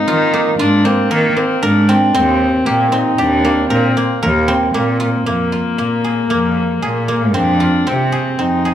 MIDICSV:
0, 0, Header, 1, 4, 480
1, 0, Start_track
1, 0, Tempo, 519481
1, 1985, Time_signature, 5, 2, 24, 8
1, 8077, End_track
2, 0, Start_track
2, 0, Title_t, "Guzheng"
2, 0, Program_c, 0, 107
2, 0, Note_on_c, 0, 58, 82
2, 0, Note_on_c, 0, 60, 66
2, 0, Note_on_c, 0, 70, 82
2, 70, Note_on_c, 0, 65, 77
2, 306, Note_off_c, 0, 58, 0
2, 310, Note_on_c, 0, 58, 69
2, 544, Note_off_c, 0, 65, 0
2, 548, Note_on_c, 0, 65, 78
2, 782, Note_off_c, 0, 58, 0
2, 785, Note_on_c, 0, 58, 70
2, 1020, Note_off_c, 0, 70, 0
2, 1023, Note_on_c, 0, 70, 75
2, 1258, Note_off_c, 0, 58, 0
2, 1262, Note_on_c, 0, 58, 58
2, 1498, Note_off_c, 0, 70, 0
2, 1502, Note_on_c, 0, 70, 85
2, 1740, Note_off_c, 0, 60, 0
2, 1744, Note_on_c, 0, 60, 76
2, 1978, Note_off_c, 0, 60, 0
2, 1982, Note_on_c, 0, 60, 81
2, 2459, Note_on_c, 0, 67, 75
2, 2695, Note_off_c, 0, 60, 0
2, 2699, Note_on_c, 0, 60, 70
2, 2879, Note_off_c, 0, 65, 0
2, 2937, Note_off_c, 0, 67, 0
2, 2941, Note_on_c, 0, 67, 66
2, 3180, Note_off_c, 0, 58, 0
2, 3184, Note_on_c, 0, 58, 64
2, 3417, Note_off_c, 0, 70, 0
2, 3421, Note_on_c, 0, 70, 75
2, 3663, Note_off_c, 0, 58, 0
2, 3667, Note_on_c, 0, 58, 59
2, 3901, Note_off_c, 0, 70, 0
2, 3905, Note_on_c, 0, 70, 76
2, 4135, Note_off_c, 0, 60, 0
2, 4139, Note_on_c, 0, 60, 73
2, 4379, Note_off_c, 0, 58, 0
2, 4382, Note_on_c, 0, 58, 67
2, 4618, Note_on_c, 0, 65, 65
2, 4860, Note_off_c, 0, 58, 0
2, 4864, Note_on_c, 0, 58, 66
2, 5099, Note_off_c, 0, 65, 0
2, 5103, Note_on_c, 0, 65, 56
2, 5116, Note_off_c, 0, 67, 0
2, 5340, Note_off_c, 0, 58, 0
2, 5344, Note_on_c, 0, 58, 58
2, 5585, Note_on_c, 0, 68, 55
2, 5819, Note_off_c, 0, 58, 0
2, 5822, Note_on_c, 0, 58, 74
2, 5865, Note_off_c, 0, 70, 0
2, 6302, Note_off_c, 0, 68, 0
2, 6305, Note_on_c, 0, 68, 66
2, 6541, Note_off_c, 0, 58, 0
2, 6544, Note_on_c, 0, 58, 65
2, 6779, Note_off_c, 0, 60, 0
2, 6783, Note_on_c, 0, 60, 76
2, 7019, Note_off_c, 0, 65, 0
2, 7023, Note_on_c, 0, 65, 64
2, 7265, Note_off_c, 0, 60, 0
2, 7269, Note_on_c, 0, 60, 68
2, 7502, Note_off_c, 0, 68, 0
2, 7505, Note_on_c, 0, 68, 59
2, 7746, Note_off_c, 0, 60, 0
2, 7750, Note_on_c, 0, 60, 67
2, 7990, Note_off_c, 0, 68, 0
2, 7994, Note_on_c, 0, 68, 55
2, 8077, Note_off_c, 0, 58, 0
2, 8077, Note_off_c, 0, 60, 0
2, 8077, Note_off_c, 0, 65, 0
2, 8077, Note_off_c, 0, 68, 0
2, 8077, End_track
3, 0, Start_track
3, 0, Title_t, "Viola"
3, 0, Program_c, 1, 41
3, 0, Note_on_c, 1, 63, 96
3, 543, Note_off_c, 1, 63, 0
3, 549, Note_on_c, 1, 62, 89
3, 784, Note_on_c, 1, 60, 78
3, 798, Note_off_c, 1, 62, 0
3, 1022, Note_on_c, 1, 58, 80
3, 1036, Note_off_c, 1, 60, 0
3, 1263, Note_on_c, 1, 60, 80
3, 1277, Note_off_c, 1, 58, 0
3, 1503, Note_on_c, 1, 62, 71
3, 1517, Note_off_c, 1, 60, 0
3, 1981, Note_on_c, 1, 60, 83
3, 1995, Note_off_c, 1, 62, 0
3, 2455, Note_on_c, 1, 58, 75
3, 2468, Note_off_c, 1, 60, 0
3, 2692, Note_off_c, 1, 58, 0
3, 2698, Note_on_c, 1, 63, 68
3, 2946, Note_on_c, 1, 62, 84
3, 2959, Note_off_c, 1, 63, 0
3, 3412, Note_off_c, 1, 62, 0
3, 3418, Note_on_c, 1, 60, 76
3, 3902, Note_on_c, 1, 58, 59
3, 3916, Note_off_c, 1, 60, 0
3, 4382, Note_off_c, 1, 58, 0
3, 4387, Note_on_c, 1, 58, 77
3, 6752, Note_off_c, 1, 58, 0
3, 6790, Note_on_c, 1, 62, 78
3, 7279, Note_on_c, 1, 60, 74
3, 7293, Note_off_c, 1, 62, 0
3, 7760, Note_on_c, 1, 63, 77
3, 7774, Note_off_c, 1, 60, 0
3, 8077, Note_off_c, 1, 63, 0
3, 8077, End_track
4, 0, Start_track
4, 0, Title_t, "Cello"
4, 0, Program_c, 2, 42
4, 69, Note_on_c, 2, 51, 81
4, 451, Note_off_c, 2, 51, 0
4, 543, Note_on_c, 2, 44, 92
4, 927, Note_off_c, 2, 44, 0
4, 1027, Note_on_c, 2, 51, 98
4, 1218, Note_off_c, 2, 51, 0
4, 1505, Note_on_c, 2, 44, 90
4, 1887, Note_off_c, 2, 44, 0
4, 1991, Note_on_c, 2, 39, 89
4, 2370, Note_off_c, 2, 39, 0
4, 2466, Note_on_c, 2, 46, 75
4, 2847, Note_off_c, 2, 46, 0
4, 2945, Note_on_c, 2, 39, 92
4, 3326, Note_off_c, 2, 39, 0
4, 3423, Note_on_c, 2, 46, 93
4, 3614, Note_off_c, 2, 46, 0
4, 3904, Note_on_c, 2, 39, 101
4, 4286, Note_off_c, 2, 39, 0
4, 4381, Note_on_c, 2, 46, 87
4, 4764, Note_off_c, 2, 46, 0
4, 4868, Note_on_c, 2, 41, 76
4, 5249, Note_off_c, 2, 41, 0
4, 5345, Note_on_c, 2, 46, 62
4, 5728, Note_off_c, 2, 46, 0
4, 5826, Note_on_c, 2, 41, 80
4, 6209, Note_off_c, 2, 41, 0
4, 6307, Note_on_c, 2, 46, 82
4, 6791, Note_on_c, 2, 41, 98
4, 6805, Note_off_c, 2, 46, 0
4, 7173, Note_off_c, 2, 41, 0
4, 7272, Note_on_c, 2, 48, 70
4, 7655, Note_off_c, 2, 48, 0
4, 7752, Note_on_c, 2, 41, 71
4, 8077, Note_off_c, 2, 41, 0
4, 8077, End_track
0, 0, End_of_file